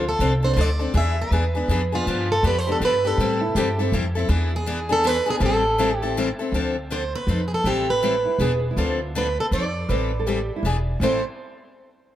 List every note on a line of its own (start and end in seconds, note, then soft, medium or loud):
0.00 0.12 D2 medium
0.09 0.32 A4 loud
0.19 0.51 C2 medium
0.19 0.31 D3 medium
0.19 0.32 F3 medium
0.19 0.32 C4 medium
0.19 0.32 D4 medium
0.19 0.32 A4 medium
0.43 0.56 C4 soft
0.43 0.57 D4 medium
0.43 0.57 A4 medium
0.43 0.52 C5 medium
0.54 0.89 D2 medium
0.54 0.68 D3 medium
0.54 0.68 F3 medium
0.54 0.61 C5 medium
0.58 0.69 C4 medium
0.58 0.69 D4 medium
0.58 0.69 A4 medium
0.58 0.96 D5 loud
0.79 0.94 C4 soft
0.79 0.93 D4 soft
0.79 0.94 A4 soft
0.94 1.24 E2 medium
0.94 1.15 E3 medium
0.94 1.15 B3 medium
0.94 1.16 D4 medium
0.94 1.16 G#4 medium
0.94 1.20 E5 loud
1.21 1.95 B4 medium
1.31 1.63 E2 medium
1.31 1.43 E3 medium
1.31 1.43 B3 medium
1.31 1.43 D4 medium
1.31 1.44 G#4 medium
1.55 1.69 B3 soft
1.55 1.69 D4 soft
1.55 1.69 G#4 medium
1.68 2.00 F2 medium
1.68 1.80 E3 medium
1.68 1.81 B3 medium
1.68 1.81 D4 medium
1.68 1.81 G#4 medium
1.92 2.07 B3 soft
1.92 2.07 D4 soft
1.92 2.32 F4 medium
1.92 2.06 G#4 medium
2.06 2.36 G2 medium
2.06 2.28 D3 medium
2.06 2.28 F3 medium
2.06 2.28 B3 medium
2.06 2.28 D4 medium
2.06 2.29 G4 medium
2.32 2.44 A4 medium
2.43 2.75 F2 medium
2.43 2.55 D3 medium
2.43 2.55 F3 medium
2.43 2.55 B3 medium
2.43 2.55 D4 medium
2.43 2.55 G4 medium
2.47 2.59 B4 medium
2.59 2.70 C5 medium
2.67 2.81 B3 soft
2.67 2.81 D4 medium
2.67 2.81 G4 medium
2.72 2.77 A4 medium
2.80 3.12 G2 medium
2.80 2.92 D3 medium
2.80 2.93 F3 medium
2.80 2.93 B3 medium
2.80 2.93 D4 medium
2.80 2.93 G4 medium
2.85 3.07 B4 medium
3.05 3.19 B3 soft
3.05 3.19 D4 soft
3.05 3.18 G4 medium
3.05 3.80 A4 medium
3.17 3.48 A2 medium
3.17 3.40 E3 medium
3.17 3.40 G3 medium
3.17 3.40 C4 medium
3.17 3.41 E4 medium
3.17 3.41 A4 medium
3.41 3.56 E4 medium
3.55 3.87 G2 medium
3.55 3.67 E3 medium
3.55 3.67 G3 medium
3.55 3.68 C4 medium
3.55 3.68 E4 medium
3.55 3.78 G4 medium
3.55 3.68 A4 medium
3.78 3.92 C4 medium
3.78 3.93 E4 medium
3.78 3.95 A4 medium
3.78 3.93 A4 medium
3.92 4.24 F2 medium
3.92 4.04 E3 medium
3.92 4.04 G3 medium
3.92 4.04 C4 medium
3.92 4.05 E4 medium
3.92 4.05 A4 medium
4.15 4.29 C4 soft
4.15 4.29 E4 soft
4.15 4.56 E4 medium
4.15 4.29 A4 medium
4.29 5.19 E2 medium
4.29 4.50 E3 medium
4.29 4.50 B3 medium
4.29 4.51 D4 medium
4.29 4.51 G#4 medium
4.56 4.89 G#4 medium
4.66 4.78 E3 medium
4.66 4.78 B3 medium
4.66 4.78 D4 medium
4.66 4.78 G#4 medium
4.89 5.03 B3 medium
4.89 5.03 D4 medium
4.89 5.03 G#4 medium
4.89 5.07 A4 medium
5.04 5.15 E3 medium
5.04 5.16 B3 medium
5.04 5.16 D4 loud
5.04 5.16 G#4 loud
5.04 5.29 B4 loud
5.26 5.41 B3 soft
5.26 5.41 D4 medium
5.26 5.41 G#4 medium
5.30 5.35 G#4 medium
5.40 6.30 A1 medium
5.40 5.62 E3 medium
5.40 5.62 G3 medium
5.40 5.62 C4 medium
5.40 5.62 E4 medium
5.40 5.63 A4 medium
5.46 5.97 A4 medium
5.78 5.90 E3 medium
5.78 5.90 G3 medium
5.78 5.90 C4 medium
5.78 5.90 E4 medium
5.78 5.91 A4 medium
5.97 6.14 G4 medium
6.02 6.17 C4 soft
6.02 6.16 E4 medium
6.02 6.16 A4 medium
6.17 6.28 E3 medium
6.17 6.28 G3 medium
6.17 6.28 C4 medium
6.17 6.28 E4 medium
6.17 6.28 A4 medium
6.39 6.53 C4 soft
6.39 6.54 E4 soft
6.39 6.53 A4 medium
6.52 7.12 D2 medium
6.52 6.75 D3 medium
6.52 6.75 F3 medium
6.52 6.75 C4 medium
6.52 6.75 D4 medium
6.52 6.75 A4 medium
6.90 7.02 D3 medium
6.90 7.02 F3 medium
6.90 7.02 C4 medium
6.90 7.02 D4 medium
6.90 7.02 A4 medium
6.90 7.15 C5 medium
7.15 7.44 B4 medium
7.27 7.57 F2 medium
7.27 7.39 F3 medium
7.27 7.39 C4 medium
7.27 7.40 D#4 medium
7.27 7.40 A4 medium
7.48 7.52 G#4 medium
7.54 7.67 A4 medium
7.64 8.24 A1 medium
7.64 7.86 E3 medium
7.64 7.86 G3 medium
7.64 7.87 C4 medium
7.64 7.87 E4 medium
7.64 7.90 G4 medium
7.64 7.87 A4 medium
7.90 8.60 B4 medium
8.03 8.14 E3 medium
8.03 8.14 G3 medium
8.03 8.14 C4 medium
8.03 8.14 E4 medium
8.03 8.14 A4 medium
8.25 8.40 E4 medium
8.39 8.69 E1 medium
8.39 8.51 E3 medium
8.39 8.51 B3 medium
8.39 8.52 D4 medium
8.39 8.70 G#4 medium
8.39 8.52 G#4 medium
8.71 8.78 E4 medium
8.77 9.37 D2 medium
8.77 8.98 D3 medium
8.77 8.98 F3 medium
8.77 8.98 C4 medium
8.77 8.99 D4 medium
8.77 9.08 F4 medium
8.77 8.99 A4 medium
9.15 9.26 D3 medium
9.15 9.26 F3 medium
9.15 9.26 C4 medium
9.15 9.26 D4 medium
9.15 9.27 A4 medium
9.15 9.38 B4 medium
9.40 9.45 A4 medium
9.51 9.81 F2 medium
9.51 9.63 F3 medium
9.51 9.63 C4 medium
9.51 9.64 D#4 medium
9.51 9.64 A4 medium
9.51 10.84 D5 medium
9.89 10.49 A1 medium
9.89 10.10 E3 medium
9.89 10.11 G3 medium
9.89 10.11 C4 medium
9.89 10.11 E4 medium
9.89 10.11 A4 medium
9.89 10.19 B4 medium
10.19 10.26 A4 medium
10.26 10.38 E3 medium
10.26 10.38 G3 medium
10.26 10.38 C4 medium
10.26 10.38 E4 medium
10.26 10.56 G4 medium
10.26 10.39 A4 medium
10.56 10.64 E4 medium
10.63 10.93 E1 medium
10.63 10.75 E3 medium
10.63 10.76 B3 medium
10.63 10.98 D4 medium
10.63 10.76 D4 medium
10.63 10.76 G#4 medium
11.00 11.22 A1 medium
11.00 11.20 A2 medium
11.00 11.20 E3 medium
11.00 11.20 G3 medium
11.00 11.22 C4 medium
11.00 11.21 C4 medium
11.00 11.21 E4 medium
11.00 11.21 A4 medium
11.00 11.24 C5 medium